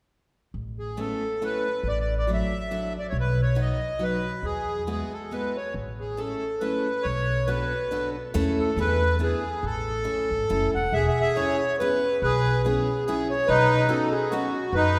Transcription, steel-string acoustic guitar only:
0.97 1.22 A3 soft
0.97 1.22 B3 soft
0.97 1.22 C#4 soft
0.97 1.22 E4 soft
1.42 1.66 A3 medium
1.42 1.66 B3 soft
1.42 1.66 C#4 soft
1.42 1.66 E4 soft
2.27 2.52 F#3 soft
2.27 2.52 A3 soft
2.27 2.52 D4 soft
2.27 2.52 E4 medium
2.71 2.95 F#3 medium
2.71 2.95 A3 soft
2.71 2.95 D4 soft
2.71 2.95 E4 medium
3.55 3.80 F#3 soft
3.55 3.80 B3 soft
3.55 3.80 D#4 soft
3.55 3.80 F#4 medium
3.99 4.23 F#3 medium
3.99 4.23 B3 soft
3.99 4.23 D#4 soft
3.99 4.24 F#4 soft
4.87 5.11 G#3 soft
4.87 5.11 B3 soft
4.87 5.11 E4 soft
4.87 5.11 F#4 soft
5.31 5.56 G#3 soft
5.31 5.56 B3 soft
5.31 5.56 E4 soft
5.31 5.56 F#4 soft
6.17 6.42 A3 soft
6.17 6.42 C#4 soft
6.17 6.42 E4 soft
6.17 6.43 A4 medium
6.61 6.86 A3 soft
6.61 6.86 C#4 medium
6.61 6.86 E4 soft
6.61 6.86 A4 soft
7.48 7.72 B3 medium
7.48 7.72 D4 soft
7.48 7.72 F#4 soft
7.48 7.72 A4 medium
7.91 8.15 B3 soft
7.91 8.15 D4 soft
7.91 8.16 F#4 soft
7.91 8.15 A4 medium
8.34 8.69 A3 medium
8.34 8.69 C#4 medium
8.34 8.69 E4 medium
8.34 8.69 A4 loud
8.78 9.01 B3 soft
8.78 9.01 D4 soft
8.78 9.01 E4 soft
8.78 9.01 G#4 medium
9.19 9.43 B3 medium
9.19 9.43 D4 soft
9.19 9.43 E4 soft
9.19 9.43 G#4 medium
10.04 10.29 A3 soft
10.04 10.29 C#4 soft
10.04 10.29 E4 soft
10.04 10.29 A4 medium
10.49 10.73 A3 soft
10.49 10.73 C#4 soft
10.49 10.73 E4 soft
10.49 10.73 A4 medium
11.36 11.60 B3 soft
11.36 11.60 C#4 soft
11.36 11.60 E4 soft
11.36 11.60 G#4 medium
11.80 12.04 B3 medium
11.80 12.03 C#4 soft
11.80 12.04 E4 soft
11.80 12.04 G#4 medium
12.65 12.88 B3 medium
12.65 12.88 C#4 medium
12.65 12.88 E4 soft
12.65 12.89 G#4 medium
13.08 13.30 B3 medium
13.08 13.31 C#4 soft
13.08 13.31 E4 medium
13.08 13.31 G#4 medium
13.89 14.13 B3 medium
13.89 14.13 C#4 soft
13.89 14.13 D#4 medium
13.89 14.13 F#4 medium
14.32 14.55 B3 medium
14.32 14.55 C#4 medium
14.32 14.56 D#4 medium
14.32 14.56 F#4 medium

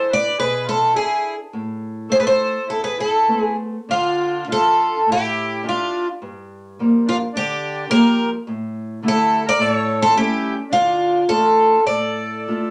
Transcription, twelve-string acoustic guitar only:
0.00 0.12 C5 medium
0.13 0.39 D5 medium
0.40 0.68 B4 medium
0.69 0.96 A4 medium
0.96 1.36 G#4 medium
2.12 2.17 C5 medium
2.20 2.25 B4 medium
2.27 2.70 C5 medium
2.70 2.84 A4 medium
2.84 2.98 B4 medium
3.00 3.40 A4 medium
3.40 3.55 G#4 medium
3.91 4.45 F4 medium
4.52 5.11 A4 medium
5.12 5.68 G4 medium
5.69 6.07 F4 medium
7.09 7.16 F4 medium
7.37 7.90 G4 medium
7.91 8.29 A#4 medium
9.08 9.45 A4 medium
9.49 9.62 D5 loud
9.62 10.02 C#5 loud
10.02 10.16 A4 medium
10.17 10.55 G4 medium
10.73 11.31 F4 medium
11.29 11.86 A4 medium
11.87 12.71 D5 medium

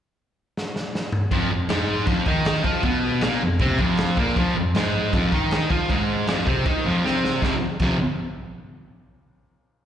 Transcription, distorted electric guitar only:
1.31 1.50 F2 loud
1.31 1.51 F3 loud
1.51 1.66 F2 medium
1.69 2.06 G#2 medium
1.69 2.07 G#3 loud
2.07 2.26 F2 medium
2.07 2.26 F3 loud
2.27 2.64 D#3 loud
2.27 2.65 D#4 loud
2.64 2.83 F3 medium
2.64 2.84 F4 loud
2.84 3.22 B2 medium
2.84 3.23 B3 loud
3.22 3.41 A#2 loud
3.22 3.42 A#3 loud
3.42 3.57 F2 medium
3.61 3.79 C3 loud
3.61 3.80 C4 loud
3.80 4.18 F2 loud
3.80 4.18 F3 loud
4.19 4.37 A#2 loud
4.19 4.37 A#3 loud
4.37 4.55 F2 loud
4.37 4.56 F3 loud
4.56 4.72 F2 medium
4.75 5.13 G#2 loud
4.75 5.14 G#3 loud
5.14 5.32 F2 loud
5.14 5.33 F3 loud
5.32 5.70 D#3 medium
5.32 5.70 D#4 loud
5.71 5.89 F3 medium
5.71 5.90 F4 loud
5.89 6.27 G#2 medium
5.89 6.28 G#3 loud
6.28 6.47 F2 medium
6.28 6.47 F3 loud
6.47 6.65 C3 medium
6.47 6.66 C4 loud
6.66 6.85 D#3 medium
6.66 6.85 D#4 loud
6.87 7.04 F2 medium
6.87 7.05 F3 loud
7.05 7.42 C3 medium
7.05 7.42 C4 medium
7.43 7.54 F2 medium
7.43 7.55 C3 loud
7.43 7.55 F3 loud
7.81 7.96 F2 medium
7.81 7.96 C3 loud
7.81 7.97 F3 loud

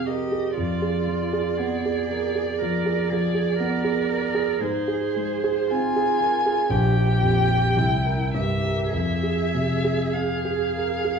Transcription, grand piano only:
0.00 0.59 C3 soft
0.00 0.59 C4 soft
0.00 0.32 G#4 soft
0.07 0.32 A#4 soft
0.32 0.57 G#4 soft
0.57 2.58 F2 soft
0.82 1.23 G#4 soft
1.07 1.48 F3 soft
1.33 1.74 G#4 soft
1.59 2.00 B3 soft
1.85 2.26 G#4 soft
2.10 2.36 A#4 soft
2.35 2.76 G#4 soft
2.62 3.01 F3 soft
2.86 3.26 G#4 soft
3.11 3.51 F3 soft
3.35 3.74 G#4 soft
3.60 4.00 B3 soft
3.84 4.25 G#4 soft
4.10 4.35 A#4 soft
4.35 4.61 G#4 soft
4.61 6.67 G#2 soft
4.88 5.33 G#4 soft
5.16 5.61 G#3 soft
5.44 5.87 G#4 soft
5.71 6.12 C4 soft
5.96 6.36 G#4 soft
6.21 6.46 A#4 soft
6.46 6.71 G#4 soft
6.70 7.74 A#1 medium
6.96 7.38 G4 soft
7.21 7.66 F2 soft
7.49 7.77 G4 soft
7.76 8.90 C2 soft
8.05 8.52 A#4 soft
8.34 8.82 G2 soft
8.63 8.94 A#4 soft
8.93 11.19 F2 soft
9.23 9.72 G#4 soft
9.54 10.03 C3 soft
9.84 10.33 G#4 soft
10.15 10.63 C4 soft
10.45 10.93 G#4 soft
10.75 11.05 A#4 soft
11.04 11.19 G#4 soft

